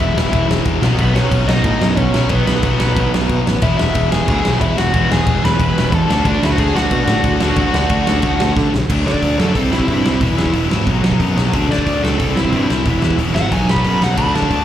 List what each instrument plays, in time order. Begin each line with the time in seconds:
Already playing: overdriven electric guitar E2 B2, distorted electric guitar E3 G#3 B3 E4, lead electric guitar E4 E5
0.00 picked electric bass E1
0.15 picked electric bass E1, snare
0.32 picked electric bass E1, overdriven electric guitar E2 B2, kick, crash
0.36 overdriven electric guitar E3
0.49 picked electric bass E1, snare
0.65 picked electric bass E2, kick, crash
0.81 picked electric bass B1, distorted electric guitar B2 D#3 F#3 B3, snare
0.85 distorted electric guitar B3 D#4
0.99 picked electric bass B1, lead electric guitar B3 B4, kick, crash
1.14 picked electric bass B1, lead electric guitar C#4 C#5, snare
1.31 picked electric bass B1, kick, crash
1.46 picked electric bass B1, overdriven electric guitar F#3 B3, lead electric guitar D#4 D#5, snare
1.50 overdriven electric guitar B2
1.64 picked electric bass A2, kick, crash
1.81 picked electric bass F#2, snare
1.97 picked electric bass B1, lead electric guitar C#4 C#5, kick, crash
2.13 picked electric bass B1, distorted electric guitar B2 D#3 F#3 B3, snare
2.17 distorted electric guitar D#4
2.29 picked electric bass B1, lead electric guitar B3 B4, kick, crash
2.46 picked electric bass B1, lead electric guitar B3 B4, snare
2.63 picked electric bass B1, kick, crash
2.78 picked electric bass B1, overdriven electric guitar F#3 B3, snare
2.83 overdriven electric guitar B2
2.97 picked electric bass B1, kick, crash
3.14 picked electric bass B1, snare
3.29 picked electric bass B2, kick, crash
3.47 picked electric bass A1, snare
3.61 picked electric bass E1, overdriven electric guitar E2 B2, distorted electric guitar E3 G#3 B3, lead electric guitar E4 E5, kick, crash
3.65 distorted electric guitar E3 E4
3.78 lead electric guitar E4 E5, snare
3.82 picked electric bass E1
3.95 picked electric bass E1, kick, crash
4.12 picked electric bass E1, lead electric guitar G#4 G#5, snare
4.27 picked electric bass D2, overdriven electric guitar E2 B2, kick, crash
4.31 overdriven electric guitar E3
4.45 picked electric bass B1, snare
4.60 picked electric bass E1, lead electric guitar E4 E5, kick, crash
4.78 picked electric bass E1, lead electric guitar F#4 F#5, snare
4.91 picked electric bass E1, overdriven electric guitar E2 B2, distorted electric guitar E3 G#3, kick, crash
4.96 distorted electric guitar E3 B3 E4
5.11 picked electric bass E1, lead electric guitar G#4 G#5, snare
5.27 picked electric bass E1, kick, crash
5.45 picked electric bass E1, lead electric guitar B4 B5, snare
5.58 picked electric bass E1, overdriven electric guitar E2 B2 E3, kick, crash
5.78 picked electric bass E1, snare
5.92 picked electric bass E2, lead electric guitar A4 A5, kick, crash
6.07 picked electric bass D2, distorted electric guitar D3 A3 D4 F#4, snare
6.11 distorted electric guitar D4
6.25 picked electric bass D2, lead electric guitar D4 D5, kick, crash
6.43 picked electric bass D2, lead electric guitar E4 E5, snare
6.50 lead electric guitar F#4 F#5
6.58 picked electric bass D2, lead electric guitar G#4 G#5, kick, crash
6.72 picked electric bass D2, overdriven electric guitar D3 A3 D4, lead electric guitar F#4
6.77 lead electric guitar F#5, snare
6.91 picked electric bass B2, kick, crash
7.07 picked electric bass A2, snare
7.24 picked electric bass D2, kick, crash
7.39 picked electric bass D2, distorted electric guitar D3 A3 D4 F#4, snare
7.56 picked electric bass D2, kick, crash
7.74 picked electric bass D2, snare
7.89 picked electric bass D2, kick, crash
8.06 picked electric bass D2, overdriven electric guitar A3 D4, snare
8.10 overdriven electric guitar D3
8.22 picked electric bass D2, kick, crash
8.40 picked electric bass D2, snare
8.57 picked electric bass D3, kick, snare
8.74 picked electric bass B1, snare
8.90 picked electric bass D2, distorted electric guitar D3 F#3 A3 D4, kick, crash
9.06 picked electric bass D3, distorted electric guitar D3 F#3 A3 D4, lead electric guitar D5, snare
9.14 kick
9.22 picked electric bass D2, distorted electric guitar D3 F#3 A3 D4, kick, open hi-hat
9.39 picked electric bass F#2, distorted electric guitar D3 F#3 A3 D4, lead electric guitar A4, snare
9.55 picked electric bass C2, distorted electric guitar C3 G3 C4 E4, lead electric guitar A4, kick, open hi-hat
9.71 picked electric bass C2, distorted electric guitar C3 G3 C4 E4, lead electric guitar E4, snare
9.80 kick
9.87 picked electric bass G2, distorted electric guitar C3 G3 C4 E4, lead electric guitar E4, kick, open hi-hat
10.03 picked electric bass C2, distorted electric guitar C3 G3 C4 E4, snare
10.21 picked electric bass E1, overdriven electric guitar E2 B2, distorted electric guitar E3 G#3 B3 E4, kick, open hi-hat
10.37 picked electric bass E2, overdriven electric guitar E2 B2, distorted electric guitar E3 G#3 B3 E4, snare
10.46 kick
10.53 picked electric bass E1, overdriven electric guitar E2 B2, distorted electric guitar E3 G#3 B3 E4, kick, open hi-hat
10.71 picked electric bass G#1, overdriven electric guitar E2 B2, distorted electric guitar E3 G#3 B3 E4, snare
10.87 picked electric bass B1, distorted electric guitar B2 F#3 B3 D#4, kick, open hi-hat
11.02 picked electric bass B1, distorted electric guitar B2 F#3 B3 D#4, snare
11.12 kick
11.20 picked electric bass F#2, distorted electric guitar B2 F#3 B3 D#4, kick, open hi-hat
11.36 picked electric bass B1, distorted electric guitar B2 F#3 B3 D#4, snare
11.53 picked electric bass D2, distorted electric guitar D3 F#3 A3 D4, kick, open hi-hat
11.69 picked electric bass D3, distorted electric guitar D3 F#3 A3 D4, lead electric guitar D5, snare
11.78 kick
11.86 picked electric bass D2, distorted electric guitar D3 F#3 A3 D4, kick, open hi-hat
12.03 picked electric bass C#2, distorted electric guitar D3 F#3 A3 D4, lead electric guitar A4, snare
12.19 picked electric bass C2, distorted electric guitar C3 G3 C4 E4, lead electric guitar A4, kick, open hi-hat
12.35 picked electric bass C2, distorted electric guitar C3 G3 C4 E4, lead electric guitar E4, snare
12.45 kick
12.51 picked electric bass G2, distorted electric guitar C3 G3 C4 E4, lead electric guitar E4, kick, open hi-hat
12.69 picked electric bass C2, distorted electric guitar C3 G3 C4 E4, snare
12.85 picked electric bass E1, overdriven electric guitar E2 B2, distorted electric guitar E3 G#3 B3 E4, kick, open hi-hat
13.00 picked electric bass E2, overdriven electric guitar E2 B2, distorted electric guitar E3 G#3 B3 E4, snare
13.11 kick
13.17 picked electric bass E1, overdriven electric guitar E2 B2, distorted electric guitar E3 G#3 B3 E4, kick, open hi-hat
13.33 picked electric bass G#1, overdriven electric guitar E2 B2, distorted electric guitar E3 G#3 B3 E4, lead electric guitar F#5, snare
13.49 picked electric bass B1, distorted electric guitar B2 F#3 B3 D#4, lead electric guitar G#5, kick, open hi-hat
13.67 picked electric bass B1, distorted electric guitar B2 F#3 B3 D#4, lead electric guitar B5, snare
13.76 kick
13.83 picked electric bass F#2, distorted electric guitar B2 F#3 B3 D#4, kick, open hi-hat
13.99 picked electric bass B1, distorted electric guitar B2 F#3 B3 D#4, snare
14.04 lead electric guitar F#5
14.17 picked electric bass D2, distorted electric guitar D3 F#3 A3 D4, lead electric guitar B5, kick, crash
14.33 distorted electric guitar D3 F#3 A3 D4, picked electric bass D3, lead electric guitar A5, snare
14.42 kick
14.51 picked electric bass D2, distorted electric guitar D3 F#3 A3 D4, kick, open hi-hat